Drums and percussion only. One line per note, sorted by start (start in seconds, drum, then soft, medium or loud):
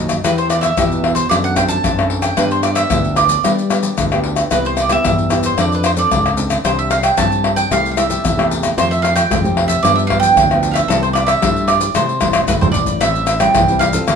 0.09 pandeiro medium
0.09 tamborim medium
0.09 maracas medium
0.25 pandeiro medium
0.25 tamborim medium
0.25 maracas medium
0.25 surdo medium
0.38 pandeiro soft
0.38 maracas soft
0.50 pandeiro medium
0.50 tamborim medium
0.50 maracas medium
0.63 pandeiro medium
0.63 tamborim medium
0.63 maracas medium
0.77 pandeiro medium
0.77 tamborim medium
0.77 maracas medium
0.77 surdo loud
0.92 pandeiro soft
0.92 maracas soft
1.04 pandeiro medium
1.04 tamborim medium
1.16 pandeiro medium
1.16 maracas medium
1.31 pandeiro medium
1.31 tamborim medium
1.31 maracas medium
1.31 surdo medium
1.45 pandeiro soft
1.45 maracas soft
1.56 pandeiro medium
1.56 tamborim medium
1.56 maracas medium
1.56 surdo medium
1.69 pandeiro medium
1.69 maracas medium
1.84 pandeiro medium
1.84 tamborim medium
1.84 maracas medium
1.84 surdo medium
1.99 pandeiro soft
1.99 tamborim medium
1.99 maracas soft
2.10 pandeiro medium
2.22 pandeiro medium
2.22 tamborim medium
2.22 maracas medium
2.37 pandeiro medium
2.37 tamborim medium
2.37 maracas medium
2.37 surdo medium
2.51 pandeiro soft
2.51 maracas soft
2.63 pandeiro medium
2.63 tamborim medium
2.63 maracas medium
2.76 pandeiro medium
2.76 tamborim medium
2.76 maracas medium
2.90 pandeiro medium
2.90 tamborim medium
2.90 maracas medium
2.90 surdo loud
3.04 pandeiro soft
3.04 maracas soft
3.16 pandeiro medium
3.16 tamborim medium
3.16 maracas medium
3.29 pandeiro medium
3.29 maracas medium
3.44 pandeiro medium
3.44 tamborim medium
3.44 maracas medium
3.44 surdo medium
3.58 pandeiro soft
3.58 maracas soft
3.70 pandeiro medium
3.70 tamborim medium
3.70 maracas medium
3.83 pandeiro medium
3.83 maracas medium
3.98 pandeiro medium
3.98 tamborim medium
3.98 maracas medium
3.98 surdo medium
4.12 pandeiro soft
4.12 tamborim medium
4.12 maracas soft
4.24 pandeiro medium
4.36 pandeiro medium
4.36 tamborim medium
4.36 maracas medium
4.51 pandeiro medium
4.51 tamborim medium
4.51 maracas medium
4.51 surdo medium
4.65 pandeiro soft
4.65 maracas soft
4.77 pandeiro medium
4.77 tamborim medium
4.77 maracas medium
4.89 pandeiro medium
4.89 tamborim medium
4.89 maracas medium
5.05 pandeiro medium
5.05 tamborim medium
5.05 maracas medium
5.05 surdo medium
5.18 pandeiro soft
5.18 maracas soft
5.30 pandeiro medium
5.30 tamborim medium
5.30 maracas medium
5.43 pandeiro medium
5.43 maracas medium
5.58 pandeiro medium
5.58 tamborim medium
5.58 maracas medium
5.58 surdo medium
5.72 pandeiro soft
5.72 maracas soft
5.84 pandeiro medium
5.84 tamborim medium
5.84 maracas medium
5.97 pandeiro medium
5.97 maracas medium
6.11 pandeiro medium
6.11 tamborim medium
6.11 maracas medium
6.11 surdo medium
6.26 pandeiro soft
6.26 tamborim medium
6.26 maracas soft
6.37 pandeiro medium
6.37 maracas medium
6.50 pandeiro medium
6.50 tamborim medium
6.50 maracas medium
6.65 pandeiro medium
6.65 tamborim medium
6.65 maracas medium
6.65 surdo medium
6.79 pandeiro soft
6.79 maracas soft
6.91 pandeiro medium
6.91 tamborim medium
6.91 maracas medium
7.03 pandeiro medium
7.03 tamborim medium
7.03 maracas medium
7.18 pandeiro medium
7.18 tamborim medium
7.18 maracas medium
7.18 surdo loud
7.32 pandeiro soft
7.32 maracas soft
7.44 pandeiro medium
7.44 tamborim medium
7.57 pandeiro medium
7.57 maracas medium
7.72 pandeiro medium
7.72 tamborim medium
7.72 maracas medium
7.72 surdo medium
7.86 pandeiro soft
7.86 maracas soft
7.97 pandeiro medium
7.97 tamborim medium
7.97 maracas medium
8.10 pandeiro medium
8.10 maracas medium
8.25 pandeiro medium
8.25 tamborim medium
8.25 maracas medium
8.25 surdo medium
8.39 pandeiro soft
8.39 tamborim medium
8.39 maracas soft
8.51 pandeiro medium
8.51 maracas medium
8.63 pandeiro medium
8.63 tamborim medium
8.63 maracas medium
8.78 pandeiro medium
8.78 tamborim medium
8.78 maracas medium
8.78 surdo medium
8.92 pandeiro soft
8.92 maracas soft
9.05 pandeiro medium
9.05 tamborim medium
9.05 maracas medium
9.16 pandeiro medium
9.16 tamborim medium
9.16 maracas medium
9.31 pandeiro medium
9.31 tamborim medium
9.31 maracas medium
9.31 surdo loud
9.45 pandeiro soft
9.45 maracas soft
9.57 pandeiro medium
9.57 tamborim medium
9.69 pandeiro medium
9.69 maracas medium
9.85 pandeiro medium
9.85 tamborim medium
9.85 maracas medium
9.85 surdo medium
9.98 pandeiro soft
9.98 maracas soft
10.10 pandeiro medium
10.10 tamborim medium
10.10 surdo medium
10.23 pandeiro medium
10.23 maracas medium
10.37 pandeiro medium
10.37 tamborim medium
10.37 maracas medium
10.37 surdo loud
10.51 pandeiro soft
10.51 tamborim medium
10.51 maracas soft
10.63 pandeiro medium
10.63 maracas medium
10.75 pandeiro medium
10.75 tamborim medium
10.75 maracas medium
10.90 pandeiro medium
10.90 tamborim medium
10.90 maracas medium
10.90 surdo medium
11.04 pandeiro soft
11.04 maracas soft
11.15 pandeiro medium
11.15 tamborim medium
11.15 maracas medium
11.28 pandeiro medium
11.28 tamborim medium
11.28 maracas medium
11.42 pandeiro medium
11.42 tamborim medium
11.42 maracas medium
11.42 surdo loud
11.56 pandeiro soft
11.56 maracas soft
11.68 pandeiro medium
11.68 tamborim medium
11.68 maracas medium
11.81 pandeiro medium
11.81 maracas medium
11.95 pandeiro medium
11.95 tamborim medium
11.95 maracas medium
11.95 surdo medium
12.09 pandeiro soft
12.09 maracas soft
12.21 pandeiro medium
12.21 tamborim medium
12.21 maracas medium
12.21 surdo medium
12.33 pandeiro medium
12.33 tamborim loud
12.33 maracas medium
12.48 pandeiro medium
12.48 tamborim medium
12.48 maracas medium
12.48 surdo medium
12.62 surdo loud
12.62 pandeiro soft
12.62 maracas soft
12.74 pandeiro medium
12.74 maracas medium
12.74 surdo medium
12.86 pandeiro medium
12.86 maracas medium
12.86 surdo medium
13.01 pandeiro medium
13.01 tamborim medium
13.01 maracas medium
13.01 surdo medium
13.15 pandeiro soft
13.15 maracas soft
13.27 pandeiro medium
13.27 tamborim medium
13.27 maracas medium
13.40 pandeiro medium
13.40 tamborim medium
13.40 maracas medium
13.55 pandeiro medium
13.55 tamborim medium
13.55 maracas medium
13.55 surdo loud
13.68 pandeiro soft
13.68 maracas soft
13.81 pandeiro medium
13.81 tamborim medium
13.81 maracas medium
13.93 pandeiro medium
13.93 maracas medium
14.08 pandeiro medium
14.08 tamborim medium
14.08 maracas medium
14.08 surdo medium